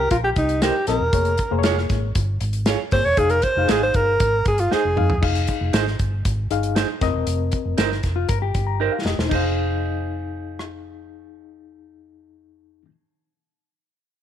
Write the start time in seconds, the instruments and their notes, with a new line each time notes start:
Already playing: alto saxophone A#4
0.00 clean electric guitar G4
0.11 fingered electric bass A#1, alto saxophone F4, clean electric guitar A#4, kick, closed hi-hat
0.24 clean electric guitar G4, alto saxophone G4
0.36 fingered electric bass C2, alto saxophone D#4, kick, closed hi-hat
0.49 closed hi-hat
0.62 clean electric guitar D#4 A#4 C5, alto saxophone G4, snare, closed hi-hat
0.87 fingered electric bass A#1, reed electric piano C4 A#4 D#5, alto saxophone A#4, snare, closed hi-hat
1.00 fingered electric bass E1
1.13 fingered electric bass F1, reed electric piano A#3 G#4 C#5, kick, closed hi-hat
1.25 closed hi-hat
1.37 kick, closed hi-hat
1.51 fingered electric bass F1, reed electric piano A#3 G#4 C5
1.59 reed electric piano C#5
1.63 clean electric guitar F4 G#4 C#5, snare, closed hi-hat
1.78 snare
1.89 fingered electric bass G#1, kick, snare, closed hi-hat
2.15 fingered electric bass G1, kick, closed hi-hat
2.41 fingered electric bass G#1, closed hi-hat
2.53 closed hi-hat
2.66 clean electric guitar F4 G#4 C#5, snare, closed hi-hat
2.91 fingered electric bass G1, reed electric piano A#3 G#4 C#5, alto saxophone C5, kick, snare, open hi-hat
3.05 fingered electric bass E1, alto saxophone C#5
3.17 fingered electric bass F1, reed electric piano D#4 G#4 F5, alto saxophone G#4, kick, closed hi-hat
3.30 alto saxophone A#4, closed hi-hat
3.42 alto saxophone C5, kick, closed hi-hat
3.57 fingered electric bass F1, reed electric piano D#4 G4 F5
3.64 reed electric piano G#4
3.68 fingered electric bass G#1, clean electric guitar D#4 G#4 C5, alto saxophone G#4, snare, closed hi-hat
3.83 alto saxophone C5
3.94 fingered electric bass G1, alto saxophone A#4, kick, closed hi-hat
4.20 fingered electric bass G#1, kick, closed hi-hat
4.45 fingered electric bass G1, alto saxophone G#4, kick, closed hi-hat
4.58 alto saxophone F4, closed hi-hat
4.71 clean electric guitar D#4 G#4 C5, alto saxophone G#4, muted fingered electric bass stroke, snare
4.85 fingered electric bass F1
4.96 fingered electric bass F2, reed electric piano D#4 G#4 F5, mid tom
5.10 floor tom
5.22 fingered electric bass F1, reed electric piano D#4 G#4 F5, kick, crash
5.35 closed hi-hat
5.47 kick, closed hi-hat
5.61 fingered electric bass F1
5.73 fingered electric bass G#1, clean electric guitar D#4 G#4 C5, snare, closed hi-hat
5.87 snare
5.99 fingered electric bass G1, kick, closed hi-hat
6.25 fingered electric bass G#1, kick, closed hi-hat
6.50 fingered electric bass G1, reed electric piano D#4 G#4 F5, closed hi-hat
6.63 closed hi-hat
6.76 clean electric guitar D#4 G#4 C5, snare, closed hi-hat
7.01 fingered electric bass F1, reed electric piano C4 A#4 D#5, kick, snare, closed hi-hat
7.14 fingered electric bass E1
7.27 fingered electric bass F1, closed hi-hat
7.52 kick, closed hi-hat
7.65 fingered electric bass F1
7.78 fingered electric bass G1, clean electric guitar D#4 A#4 C5, snare, closed hi-hat
7.92 snare
8.03 fingered electric bass F1, kick, snare, closed hi-hat
8.16 clean electric guitar F4
8.29 fingered electric bass G1, clean electric guitar A#4, kick, closed hi-hat
8.42 clean electric guitar G4
8.54 fingered electric bass G1, kick, closed hi-hat
8.67 reed electric piano A#5
8.80 clean electric guitar D#4 A#4 C5, reed electric piano A#4 G5
8.92 reed electric piano F5
9.04 fingered electric bass F1, reed electric piano G4 D#5, snare
9.18 fingered electric bass E1, reed electric piano D#4 C5, snare
9.29 fingered electric bass F1, reed electric piano F2 D#4 G#4, clean electric guitar D#4 G#4, kick, crash
9.35 clean electric guitar C5, reed electric piano F5
10.59 cross-stick